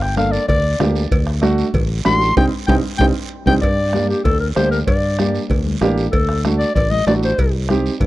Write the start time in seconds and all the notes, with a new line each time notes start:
Already playing: G1
0.02 G5, bombo rim
0.16 A#3 D4 A4 F5, bombo rim, high conga, short guiro
0.31 D5, short guiro
0.48 D2 D5, bombo low, cowbell, low conga, long guiro
0.79 D2 A#3 D4 G4, bombo rim, high conga, low conga, low timbale, short guiro
0.95 short guiro
1.11 D2, bombo low, cowbell, long guiro
1.27 bombo rim
1.42 A3 D4 F#4, bombo rim, high conga, short guiro
1.58 short guiro
1.74 A1, bombo low, cowbell, low conga, long guiro
2.05 A1 A3 D4 F#4 C6, bombo rim, high conga, low timbale, short guiro
2.21 short guiro
2.37 C2 G3 C4 D#4 G5, bombo low, high conga, high timbale, long guiro
2.67 C2 G3 C4 D#4 G5, bombo low, high conga, high timbale
2.98 C2 G3 C4 D#4 G5, bombo low, high conga, high timbale
3.46 C2 G3 C4 D#4 G5, bombo low, high conga, high timbale, long guiro
3.61 G2 D5, bombo low, cowbell, long guiro
3.93 A#3 D4 G4, bombo rim, high conga, short guiro
4.10 G4, short guiro
4.24 D2 A4, bombo low, cowbell, low conga, long guiro
4.40 A#4
4.56 D2 A#3 D4 G4 C5, bombo rim, high conga, short guiro
4.71 A#4, short guiro
4.86 G2 D5, bombo low, cowbell, low conga, long guiro
5.19 A#3 D4 G4, bombo rim, high conga, short guiro
5.35 short guiro
5.50 D2, bombo low, cowbell, low conga, long guiro
5.66 high conga
5.81 A1 A#3 D4 G4, bombo rim, high conga, low timbale, short guiro
5.98 short guiro
6.12 D2 A4, bombo low, cowbell, long guiro
6.29 bombo rim
6.45 A3 D4 F#4, bombo rim, high conga, short guiro
6.58 D5, short guiro
6.75 A1 D5, bombo low, cowbell, low conga, long guiro
6.90 D#5, high conga
7.07 A1 A3 D4 F#4 D5, bombo rim, high conga, low timbale, short guiro
7.23 C5, short guiro
7.38 C2, bombo low, cowbell, long guiro
7.69 C4 D#4 G4, bombo rim, high conga, short guiro
7.86 short guiro
8.00 G2, bombo low, cowbell, low conga, long guiro